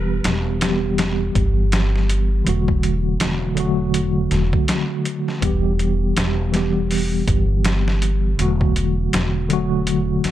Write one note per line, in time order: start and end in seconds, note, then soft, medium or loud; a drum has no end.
0.00 0.21 E1 medium
0.00 0.57 E3 medium
0.00 0.57 G3 medium
0.00 0.58 B3 medium
0.00 0.59 G4 medium
0.24 1.33 E1 medium
0.24 snare loud
0.24 closed hi-hat medium
0.59 2.42 E3 medium
0.59 2.43 G3 medium
0.59 2.43 B3 medium
0.59 snare medium
0.59 closed hi-hat medium
0.64 2.44 G4 medium
0.98 snare medium
0.98 closed hi-hat medium
1.35 2.44 G1 medium
1.35 kick medium
1.35 closed hi-hat medium
1.72 snare loud
1.72 closed hi-hat medium
1.96 snare soft
2.09 closed hi-hat medium
2.45 3.18 E1 medium
2.45 3.53 D3 medium
2.45 3.54 F#3 medium
2.45 3.55 A3 medium
2.45 closed hi-hat medium
2.49 3.55 F#4 medium
2.68 kick medium
2.83 closed hi-hat medium
3.20 4.29 E1 medium
3.20 snare loud
3.20 closed hi-hat medium
3.55 5.38 D3 medium
3.55 5.39 F#3 medium
3.55 5.39 A3 medium
3.55 closed hi-hat medium
3.60 5.40 F#4 medium
3.94 closed hi-hat medium
4.31 4.51 E1 medium
4.31 snare soft
4.31 closed hi-hat medium
4.53 kick medium
4.68 snare loud
4.68 closed hi-hat medium
5.05 closed hi-hat medium
5.28 snare soft
5.41 6.14 E1 medium
5.41 6.49 E3 medium
5.41 6.50 G3 medium
5.41 6.51 B3 medium
5.41 kick loud
5.41 closed hi-hat medium
5.45 6.51 G4 medium
5.79 closed hi-hat medium
6.17 7.25 E1 medium
6.17 snare loud
6.17 closed hi-hat medium
6.52 8.34 E3 medium
6.52 8.35 G3 medium
6.52 8.36 B3 medium
6.52 snare soft
6.52 closed hi-hat medium
6.56 8.36 G4 medium
6.91 open hi-hat medium
7.28 8.36 G1 medium
7.28 kick medium
7.28 closed hi-hat medium
7.65 snare loud
7.65 closed hi-hat medium
7.88 snare medium
8.02 closed hi-hat medium
8.37 9.10 E1 medium
8.37 9.45 D3 medium
8.37 9.46 F#3 medium
8.37 9.47 A3 medium
8.37 closed hi-hat medium
8.41 9.48 F#4 medium
8.61 kick medium
8.76 closed hi-hat medium
9.13 10.21 E1 medium
9.13 snare loud
9.13 closed hi-hat medium
9.49 10.31 D3 medium
9.49 10.31 F#3 medium
9.49 10.31 A3 medium
9.49 closed hi-hat medium
9.53 10.31 F#4 medium
9.87 closed hi-hat medium
10.24 10.31 E1 medium
10.24 snare soft
10.24 closed hi-hat medium